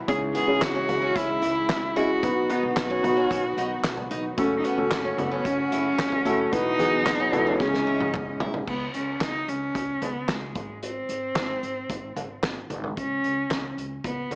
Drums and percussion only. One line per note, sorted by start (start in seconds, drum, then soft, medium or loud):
0.08 kick loud
0.08 closed hi-hat medium
0.35 closed hi-hat medium
0.62 kick loud
0.62 snare loud
0.62 clap loud
0.62 clap medium
0.62 closed hi-hat medium
0.89 closed hi-hat medium
0.89 floor tom medium
1.16 kick loud
1.16 closed hi-hat medium
1.43 closed hi-hat medium
1.69 kick loud
1.69 snare loud
1.69 clap loud
1.69 clap medium
1.69 closed hi-hat loud
1.96 closed hi-hat medium
2.23 kick loud
2.23 closed hi-hat medium
2.50 closed hi-hat medium
2.77 kick loud
2.77 snare loud
2.77 clap medium
2.77 closed hi-hat medium
3.04 closed hi-hat medium
3.04 floor tom medium
3.31 kick loud
3.31 closed hi-hat loud
3.57 closed hi-hat medium
3.84 kick loud
3.84 snare loud
3.84 clap loud
3.84 clap medium
3.84 closed hi-hat loud
3.97 floor tom medium
4.11 closed hi-hat medium
4.38 kick loud
4.38 closed hi-hat loud
4.64 closed hi-hat medium
4.91 kick loud
4.91 snare loud
4.91 clap medium
4.91 clap loud
4.91 closed hi-hat medium
5.19 closed hi-hat medium
5.19 floor tom medium
5.45 kick loud
5.45 closed hi-hat medium
5.72 closed hi-hat medium
5.99 kick loud
5.99 snare loud
5.99 clap loud
5.99 clap medium
5.99 closed hi-hat loud
6.12 floor tom medium
6.26 closed hi-hat medium
6.53 kick loud
6.53 closed hi-hat loud
6.79 closed hi-hat medium
7.06 kick loud
7.06 snare loud
7.06 clap loud
7.06 clap medium
7.06 closed hi-hat loud
7.33 closed hi-hat medium
7.33 floor tom medium
7.60 kick loud
7.60 snare medium
7.74 snare medium
8.01 high tom medium
8.14 kick loud
8.14 clap medium
8.14 mid tom loud
8.40 floor tom loud
8.54 floor tom medium
8.67 kick loud
8.67 crash medium
8.94 closed hi-hat medium
9.21 kick loud
9.21 snare medium
9.21 clap medium
9.21 closed hi-hat medium
9.48 closed hi-hat medium
9.75 kick medium
9.75 closed hi-hat medium
10.02 closed hi-hat medium
10.02 floor tom medium
10.29 kick loud
10.29 snare loud
10.29 clap loud
10.29 closed hi-hat loud
10.55 kick medium
10.55 closed hi-hat medium
10.55 floor tom medium
10.83 closed hi-hat medium
11.09 closed hi-hat medium
11.36 kick loud
11.36 snare loud
11.36 clap medium
11.36 closed hi-hat medium
11.63 closed hi-hat medium
11.90 kick loud
11.90 closed hi-hat medium
12.16 closed hi-hat medium
12.16 floor tom medium
12.43 kick loud
12.43 snare loud
12.43 clap loud
12.43 closed hi-hat loud
12.70 closed hi-hat medium
12.70 floor tom medium
12.84 floor tom medium
12.97 kick loud
12.97 closed hi-hat medium
13.24 closed hi-hat medium
13.51 kick medium
13.51 snare loud
13.51 clap medium
13.51 closed hi-hat medium
13.78 closed hi-hat medium
14.04 kick loud
14.04 closed hi-hat medium
14.31 closed hi-hat medium
14.31 floor tom medium